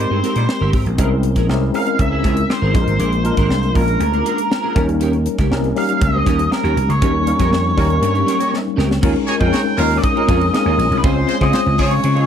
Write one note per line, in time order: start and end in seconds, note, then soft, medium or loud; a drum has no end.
0.00 0.98 G#3 medium
0.00 0.99 C4 medium
0.00 1.00 D#4 medium
0.00 1.00 G4 medium
0.00 1.00 A#4 medium
0.00 0.69 C5 medium
0.00 1.00 C5 medium
0.10 0.21 G2 medium
0.10 0.22 C4 soft
0.10 0.22 G4 soft
0.10 0.21 A#4 soft
0.23 0.36 C4 medium
0.23 0.36 G4 medium
0.23 0.35 A#4 medium
0.23 snare soft
0.23 closed hi-hat medium
0.36 0.46 A#2 medium
0.36 0.52 G3 medium
0.36 0.52 D#4 medium
0.36 0.52 C5 medium
0.36 muted clean electric guitar stroke soft
0.36 closed hi-hat medium
0.48 muted clean electric guitar stroke soft
0.48 snare loud
0.61 0.71 G1 loud
0.61 0.72 C4 medium
0.61 0.73 G4 medium
0.61 0.74 A#4 medium
0.73 0.83 G#1 medium
0.73 0.84 C4 medium
0.73 0.84 G4 medium
0.73 0.85 A#4 medium
0.73 kick loud
0.73 open hi-hat medium
0.86 0.96 A#1 medium
0.86 muted clean electric guitar stroke soft
0.86 closed hi-hat soft
0.98 1.36 C2 medium
0.98 1.42 G#3 medium
0.98 1.42 C4 medium
0.98 1.42 C#4 medium
0.98 1.12 E4 medium
0.98 1.42 E4 medium
0.98 1.11 G#4 medium
0.98 1.43 A#4 loud
0.98 1.10 A#4 medium
0.98 kick loud
0.98 closed hi-hat loud
1.11 muted clean electric guitar stroke soft
1.23 muted clean electric guitar stroke soft
1.23 closed hi-hat medium
1.36 1.49 A#1 medium
1.36 1.47 E4 soft
1.36 1.47 G#4 medium
1.36 1.46 A#4 medium
1.36 kick medium
1.36 snare soft
1.36 closed hi-hat medium
1.49 1.69 C2 loud
1.49 1.71 G#3 medium
1.49 1.71 C4 medium
1.49 1.71 C#4 medium
1.49 1.71 E4 medium
1.49 1.71 A#4 medium
1.49 muted clean electric guitar stroke soft
1.49 snare loud
1.61 muted clean electric guitar stroke soft
1.74 2.61 G#3 medium
1.74 2.61 C4 medium
1.74 2.61 C#4 medium
1.74 2.61 E4 medium
1.74 2.61 A#4 medium
1.74 1.98 F5 medium
1.74 open hi-hat medium
1.86 muted clean electric guitar stroke soft
1.86 closed hi-hat soft
1.99 2.19 C#2 medium
1.99 2.52 E5 loud
1.99 muted clean electric guitar stroke soft
1.99 kick medium
1.99 closed hi-hat medium
2.11 2.22 E4 medium
2.11 2.22 G#4 soft
2.11 2.22 C5 medium
2.23 2.44 C#2 medium
2.23 2.37 E4 medium
2.23 2.36 G#4 medium
2.23 2.35 A#4 medium
2.23 kick medium
2.23 snare soft
2.23 closed hi-hat medium
2.36 muted clean electric guitar stroke soft
2.36 closed hi-hat medium
2.49 2.73 C5 medium
2.49 muted clean electric guitar stroke soft
2.49 snare loud
2.62 2.72 G#1 medium
2.62 2.74 E4 medium
2.62 2.74 G#4 medium
2.62 2.74 A#4 medium
2.73 2.85 A#1 medium
2.73 3.18 G#3 medium
2.73 3.18 A#3 medium
2.73 3.18 D4 medium
2.73 3.18 F4 medium
2.73 2.81 G#4 medium
2.73 3.72 C5 medium
2.73 muted clean electric guitar stroke soft
2.73 kick loud
2.73 snare soft
2.73 closed hi-hat medium
2.81 3.21 A#4 medium
2.87 2.97 G#1 medium
2.87 muted clean electric guitar stroke soft
2.87 closed hi-hat soft
2.99 3.30 A#1 loud
2.99 3.13 D4 medium
2.99 3.12 G#4 medium
2.99 3.11 A#4 medium
2.99 closed hi-hat loud
3.12 muted clean electric guitar stroke soft
3.12 closed hi-hat soft
3.24 3.68 G#3 medium
3.24 3.68 A#3 medium
3.24 3.68 D4 medium
3.24 3.68 F4 medium
3.24 3.69 A#4 medium
3.24 muted clean electric guitar stroke soft
3.24 closed hi-hat medium
3.37 3.47 G#1 medium
3.37 3.49 D4 soft
3.37 3.48 G#4 medium
3.37 3.48 A#4 medium
3.37 kick medium
3.37 snare soft
3.37 closed hi-hat medium
3.50 3.70 C2 medium
3.50 muted clean electric guitar stroke soft
3.50 snare loud
3.62 muted clean electric guitar stroke soft
3.62 closed hi-hat soft
3.74 3.95 A#1 medium
3.74 4.62 G#3 medium
3.74 4.62 A#3 medium
3.74 3.81 C#4 medium
3.74 4.62 F4 medium
3.74 4.62 A#4 medium
3.74 4.72 A#4 medium
3.74 kick medium
3.74 open hi-hat medium
3.80 4.65 D4 medium
3.87 muted clean electric guitar stroke soft
3.87 closed hi-hat soft
4.00 4.20 D2 medium
4.00 muted clean electric guitar stroke soft
4.00 closed hi-hat medium
4.12 4.23 D4 soft
4.12 4.24 G#4 medium
4.12 4.23 A#4 medium
4.12 closed hi-hat soft
4.24 4.38 D4 medium
4.24 4.38 G#4 medium
4.24 4.36 A#4 medium
4.24 closed hi-hat medium
4.38 muted clean electric guitar stroke soft
4.38 closed hi-hat medium
4.50 muted clean electric guitar stroke soft
4.50 snare loud
4.62 4.75 D4 medium
4.62 4.76 G#4 medium
4.62 4.76 A#4 medium
4.75 5.26 D#2 medium
4.75 5.41 G3 medium
4.75 5.41 A#3 medium
4.75 5.41 C#4 medium
4.75 4.86 C#4 medium
4.75 5.41 D#4 medium
4.75 4.87 G4 medium
4.75 5.41 A#4 loud
4.75 4.87 A#4 medium
4.75 kick loud
4.75 snare soft
4.75 closed hi-hat medium
4.88 muted clean electric guitar stroke soft
4.88 closed hi-hat soft
5.00 5.14 C#4 medium
5.00 5.14 G4 medium
5.00 5.12 A#4 medium
5.00 closed hi-hat loud
5.13 muted clean electric guitar stroke soft
5.13 closed hi-hat soft
5.26 muted clean electric guitar stroke soft
5.26 closed hi-hat medium
5.38 5.49 C#2 medium
5.38 5.50 C#4 medium
5.38 5.50 G4 medium
5.38 5.49 A#4 medium
5.38 kick medium
5.38 snare soft
5.38 closed hi-hat medium
5.51 5.71 C2 medium
5.51 5.73 G3 medium
5.51 5.73 A#3 medium
5.51 5.73 C#4 medium
5.51 5.73 D#4 medium
5.51 5.73 A#4 medium
5.51 muted clean electric guitar stroke soft
5.51 snare loud
5.64 muted clean electric guitar stroke soft
5.64 closed hi-hat soft
5.75 6.63 G3 medium
5.75 6.63 A#3 medium
5.75 6.63 C#4 medium
5.75 6.63 D#4 medium
5.75 6.63 G4 medium
5.75 6.02 F5 medium
5.75 open hi-hat medium
5.89 muted clean electric guitar stroke soft
5.89 closed hi-hat soft
6.01 6.22 C#2 medium
6.01 6.49 D#5 loud
6.01 muted clean electric guitar stroke soft
6.01 kick loud
6.01 closed hi-hat medium
6.14 6.25 C#4 soft
6.14 6.25 G4 soft
6.14 6.24 C5 medium
6.26 6.47 D#2 medium
6.26 6.40 C#4 medium
6.26 6.39 G4 loud
6.26 6.38 A#4 loud
6.26 kick medium
6.26 snare soft
6.26 closed hi-hat medium
6.39 muted clean electric guitar stroke soft
6.39 closed hi-hat medium
6.51 6.91 A#4 medium
6.51 muted clean electric guitar stroke soft
6.51 snare medium
6.63 6.74 D#2 medium
6.63 6.75 C#4 medium
6.63 6.76 G4 medium
6.63 6.76 A#4 loud
6.63 closed hi-hat soft
6.76 6.87 C2 medium
6.76 muted clean electric guitar stroke soft
6.76 closed hi-hat medium
6.89 6.99 C#2 medium
6.89 8.49 C#5 medium
6.89 muted clean electric guitar stroke soft
6.89 closed hi-hat medium
7.01 7.32 D#2 medium
7.01 7.24 G3 medium
7.01 7.24 A#3 medium
7.01 7.15 C#4 medium
7.01 7.24 C#4 medium
7.01 7.24 D#4 medium
7.01 7.14 G4 medium
7.01 7.24 A#4 medium
7.01 7.13 A#4 medium
7.01 kick loud
7.01 closed hi-hat loud
7.14 muted clean electric guitar stroke medium
7.26 7.70 G3 medium
7.26 7.70 A#3 medium
7.26 7.71 C#4 medium
7.26 7.71 D#4 medium
7.26 7.71 A#4 medium
7.26 muted clean electric guitar stroke soft
7.26 closed hi-hat medium
7.39 7.50 F2 medium
7.39 7.50 A#3 medium
7.39 7.50 C#4 soft
7.39 7.50 G4 medium
7.39 7.50 A#4 medium
7.39 7.50 C#5 loud
7.39 kick medium
7.39 snare soft
7.39 closed hi-hat medium
7.52 7.72 F2 loud
7.52 muted clean electric guitar stroke medium
7.52 snare loud
7.64 muted clean electric guitar stroke medium
7.77 7.98 D#2 medium
7.77 8.64 G3 medium
7.77 8.64 A#3 medium
7.77 7.88 A#3 medium
7.77 8.64 C#4 medium
7.77 8.64 D#4 medium
7.77 7.88 G4 medium
7.77 8.65 A#4 loud
7.77 7.88 C#5 medium
7.77 kick medium
7.77 open hi-hat medium
7.89 muted clean electric guitar stroke soft
7.89 closed hi-hat soft
8.01 8.22 G2 medium
8.01 8.13 A#3 medium
8.01 8.13 G4 medium
8.01 8.13 C#5 loud
8.01 muted clean electric guitar stroke soft
8.01 closed hi-hat loud
8.14 8.25 C#4 soft
8.14 8.25 G4 medium
8.14 8.25 A#4 medium
8.14 closed hi-hat soft
8.26 8.41 C#4 medium
8.26 8.39 G4 medium
8.26 8.38 A#4 loud
8.26 snare soft
8.26 closed hi-hat medium
8.39 8.61 A#3 medium
8.39 8.61 G4 medium
8.39 8.61 C#5 loud
8.39 muted clean electric guitar stroke soft
8.39 closed hi-hat medium
8.54 snare medium
8.64 muted clean electric guitar stroke medium
8.76 8.98 C#2 medium
8.76 8.90 C#4 medium
8.76 8.89 G4 loud
8.76 8.88 A#4 loud
8.76 snare medium
8.89 muted clean electric guitar stroke soft
8.89 snare medium
9.01 9.13 D#2 loud
9.01 9.35 G#3 medium
9.01 9.15 C#4 medium
9.01 9.36 C#4 medium
9.01 9.36 D#4 medium
9.01 9.14 F4 medium
9.01 9.36 F4 medium
9.01 9.13 G#4 medium
9.01 9.36 A#4 loud
9.01 kick loud
9.01 crash loud
9.14 muted clean electric guitar stroke soft
9.14 ride soft
9.27 9.35 A#3 loud
9.27 9.35 G#4 loud
9.27 9.35 C#5 loud
9.27 9.34 G#5 loud
9.27 muted clean electric guitar stroke soft
9.27 ride medium
9.39 9.51 F2 medium
9.39 9.73 G#3 medium
9.39 9.73 C#4 medium
9.39 9.51 C#4 medium
9.39 9.73 D#4 medium
9.39 9.51 F4 medium
9.39 9.73 F4 medium
9.39 9.50 G#4 medium
9.39 9.74 A#4 medium
9.39 9.79 G5 loud
9.39 kick medium
9.39 ride soft
9.52 9.60 A#3 medium
9.52 9.60 G#4 loud
9.52 9.60 C#5 loud
9.52 muted clean electric guitar stroke soft
9.52 snare medium
9.52 ride medium
9.65 muted clean electric guitar stroke medium
9.77 9.98 D#2 medium
9.77 9.94 F3 loud
9.77 10.11 G#3 medium
9.77 9.93 C#4 loud
9.77 10.11 C#4 medium
9.77 10.11 D#4 medium
9.77 10.11 F4 medium
9.77 9.93 A#4 loud
9.77 10.11 A#4 medium
9.77 9.97 F5 medium
9.77 open hi-hat medium
9.77 ride medium
9.90 muted clean electric guitar stroke soft
9.90 ride soft
9.97 10.03 D5 medium
10.03 10.50 D#5 loud
10.03 muted clean electric guitar stroke soft
10.03 kick medium
10.03 hi-hat pedal medium
10.03 ride medium
10.15 10.48 G#3 medium
10.15 10.49 C#4 medium
10.15 10.26 C#4 medium
10.15 10.49 D#4 medium
10.15 10.26 F4 medium
10.15 10.49 F4 medium
10.15 10.26 A#4 medium
10.15 10.49 A#4 medium
10.15 ride soft
10.27 10.48 F2 medium
10.27 10.41 C#4 loud
10.27 10.40 F4 medium
10.27 10.39 G#4 loud
10.27 kick loud
10.27 snare soft
10.27 ride medium
10.40 muted clean electric guitar stroke soft
10.40 ride medium
10.53 10.97 G#3 medium
10.53 10.97 C#4 medium
10.53 10.97 D#4 medium
10.53 10.98 F4 medium
10.53 10.98 A#4 medium
10.53 10.94 D#5 medium
10.53 muted clean electric guitar stroke soft
10.53 snare loud
10.53 ride medium
10.65 10.76 D#2 loud
10.65 10.77 C#4 medium
10.65 10.78 F4 medium
10.65 10.79 G#4 medium
10.78 10.88 A#1 medium
10.78 muted clean electric guitar stroke soft
10.78 snare soft
10.78 ride medium
10.91 11.01 C2 medium
10.91 muted clean electric guitar stroke soft
10.91 ride soft
10.98 11.04 B4 medium
11.03 11.24 C#2 loud
11.03 11.36 G#3 medium
11.03 11.17 C4 medium
11.03 11.36 C4 medium
11.03 11.36 C#4 medium
11.03 11.16 F4 medium
11.03 11.36 F4 medium
11.03 11.15 G#4 medium
11.03 11.37 C5 medium
11.03 11.40 C5 medium
11.03 kick loud
11.03 ride medium
11.16 muted clean electric guitar stroke medium
11.28 11.36 G#3 loud
11.28 11.36 F4 loud
11.28 11.36 C5 loud
11.28 muted clean electric guitar stroke soft
11.28 ride medium
11.40 11.51 C#3 medium
11.40 11.74 G#3 medium
11.40 11.74 C4 medium
11.40 11.52 C4 medium
11.40 11.74 C#4 medium
11.40 11.52 F4 medium
11.40 11.74 F4 medium
11.40 11.51 G#4 medium
11.40 11.74 C5 medium
11.40 11.81 D#5 medium
11.40 kick medium
11.40 snare soft
11.40 ride soft
11.52 11.61 G#3 loud
11.52 11.61 F4 loud
11.52 11.61 C5 loud
11.52 muted clean electric guitar stroke soft
11.52 snare loud
11.52 ride medium
11.66 11.76 C#2 medium
11.66 muted clean electric guitar stroke soft
11.66 ride soft
11.78 11.99 C#3 loud
11.78 11.94 F3 loud
11.78 12.11 G#3 medium
11.78 11.94 C#4 loud
11.78 12.11 C#4 medium
11.78 12.12 F4 medium
11.78 11.94 G#4 loud
11.78 12.12 C#5 medium
11.78 12.26 C#5 medium
11.78 kick medium
11.78 open hi-hat medium
11.78 ride medium
11.91 muted clean electric guitar stroke soft
11.91 ride soft
12.03 12.24 C#3 medium
12.03 muted clean electric guitar stroke soft
12.03 hi-hat pedal medium
12.03 ride medium
12.15 12.26 G#3 medium
12.15 12.26 C4 soft
12.15 12.26 C#4 medium
12.15 12.26 F4 medium
12.15 12.26 G#4 medium
12.15 12.26 C#5 medium
12.15 ride soft